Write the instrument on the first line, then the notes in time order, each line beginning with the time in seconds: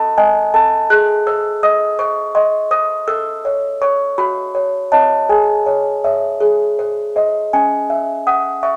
music box
Already playing: F#4 A4 A5
0.17 D#5 G#5
0.54 A4 A5
0.90 G#4 F#6
1.27 C5 E6
1.63 D#5 D#6
1.99 C5 C#6
2.35 D#5 C6
2.71 C5 D#6
3.08 A4 E6
3.45 C#5
3.82 C#5 C#6
4.18 F#4 B5
4.55 C#5
4.92 C#5 D#5 A5
5.29 G#4 G#5
5.66 C#5
6.04 C#5 E5
6.40 G#4
6.79 C5
7.16 C5 D#5
7.53 C#4 G#5
7.90 E5
8.27 F#5 D#6
8.63 E5 C#6